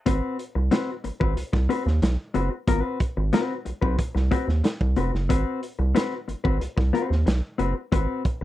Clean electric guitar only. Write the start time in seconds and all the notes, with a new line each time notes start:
0.06 C4 F#4 B4
0.55 muted clean electric guitar stroke
0.71 C4 F#4 B4
1.04 muted clean electric guitar stroke
1.20 C4 F#4 B4
1.36 muted clean electric guitar stroke
1.53 muted clean electric guitar stroke
1.69 C4 F#4 B4
1.86 muted clean electric guitar stroke
2.02 muted clean electric guitar stroke
2.34 C4 F#4 B4
2.51 muted clean electric guitar stroke
2.67 B3 F4 A#4
2.80 C4 F#4 B4
3.17 muted clean electric guitar stroke
3.33 C4 F#4 B4
3.65 muted clean electric guitar stroke
3.82 C4 F#4 B4
3.98 muted clean electric guitar stroke
4.15 muted clean electric guitar stroke
4.31 C4 F#4 B4
4.48 muted clean electric guitar stroke
4.64 muted clean electric guitar stroke
4.96 C4 F#4 B4
5.13 muted clean electric guitar stroke
5.29 C4 F#4 B4
5.79 muted clean electric guitar stroke
5.95 C4 F#4 B4
6.28 muted clean electric guitar stroke
6.44 C4 F#4 B4
6.60 muted clean electric guitar stroke
6.77 muted clean electric guitar stroke
6.93 C4 F#4 B4
7.09 muted clean electric guitar stroke
7.26 muted clean electric guitar stroke
7.58 C4 F#4 B4
7.75 muted clean electric guitar stroke
7.92 C4 F#4 B4